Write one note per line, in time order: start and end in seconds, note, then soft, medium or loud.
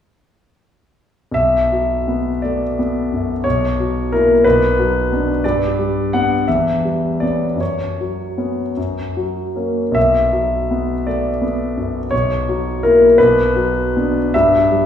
1.31 3.38 B1 soft
1.31 2.41 E5 medium
1.73 2.29 F#3 soft
2.08 2.63 B3 soft
2.42 2.77 A3 soft
2.42 3.45 D5 soft
2.79 3.32 B3 soft
3.13 3.46 F#2 soft
3.44 4.42 B1 soft
3.44 4.11 C#5 medium
3.80 4.32 F#3 soft
4.12 4.43 A#3 soft
4.12 4.42 E4 soft
4.12 4.45 A#4 medium
4.44 5.41 B1 soft
4.44 5.43 B4 medium
4.79 5.31 F#3 soft
5.12 5.41 B3 soft
5.12 5.41 D4 soft
5.44 6.44 G2 soft
5.44 6.12 D5 medium
5.79 6.33 G3 soft
6.13 6.44 B3 soft
6.13 6.45 D4 soft
6.13 6.47 F#5 medium
6.48 7.58 E2 soft
6.48 7.21 E5 medium
6.85 7.45 G3 soft
7.20 7.57 B3 soft
7.20 7.56 C#4 soft
7.20 7.59 D5 soft
7.56 8.71 F#2 soft
7.61 8.77 C#5 soft
8.01 8.62 F#3 soft
8.38 8.73 B3 soft
8.38 8.73 C#4 soft
8.77 9.92 F#2 soft
9.17 9.81 F#3 soft
9.56 9.91 A#3 soft
9.56 9.92 C#4 soft
9.92 12.06 B1 soft
9.92 11.06 E5 medium
10.33 10.92 F#3 soft
10.71 11.29 B3 soft
11.07 11.43 A3 soft
11.07 12.12 D5 medium
11.42 11.98 B3 soft
11.77 12.12 F#2 soft
12.11 13.14 B1 soft
12.11 12.81 C#5 medium
12.49 13.04 F#3 soft
12.83 13.15 A#3 soft
12.83 13.15 E4 soft
12.83 13.18 A#4 medium
13.18 14.30 B1 soft
13.18 14.33 B4 medium
13.56 14.18 F#3 soft
13.97 14.30 B3 soft
13.97 14.30 D4 soft
14.34 14.86 G2 soft
14.34 14.86 E5 medium
14.72 14.86 G3 soft